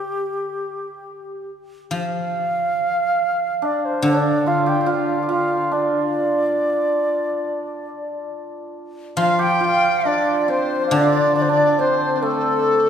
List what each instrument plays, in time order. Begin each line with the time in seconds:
Already playing: xiao G4
1.91 guzheng F3
1.96 xiao F5
3.62 hammered dulcimer D4, xiao D5
3.79 xiao D5
3.85 xiao C5
4.02 guzheng D3, hammered dulcimer D4, xiao D5
4.46 hammered dulcimer F4, xiao F5
4.66 hammered dulcimer G4, xiao G5
4.81 hammered dulcimer G4, xiao G5
4.86 hammered dulcimer F4, xiao F5
5.23 hammered dulcimer G4
5.29 hammered dulcimer F4, xiao F5
5.71 hammered dulcimer D4, xiao D5
9.17 guzheng F3, hammered dulcimer F4, dizi F5, xiao F5
9.39 hammered dulcimer G4, xiao G5, dizi G5
9.56 xiao G5
9.60 hammered dulcimer F4
9.65 xiao F5
10.05 hammered dulcimer D4, dizi D5, xiao D5
10.44 dizi D5
10.48 hammered dulcimer C4, xiao C5, dizi C5
10.86 xiao F5
10.91 guzheng D3, hammered dulcimer D4, xiao D5, dizi D5
11.01 dizi F5
11.08 dizi D5
11.35 hammered dulcimer D4, xiao D5, dizi D5
11.42 xiao C5
11.49 hammered dulcimer D4, xiao D5, dizi D5
11.79 hammered dulcimer C4, xiao C5, dizi C5
12.16 hammered dulcimer C4, dizi C5
12.22 hammered dulcimer A3, dizi A4, xiao A4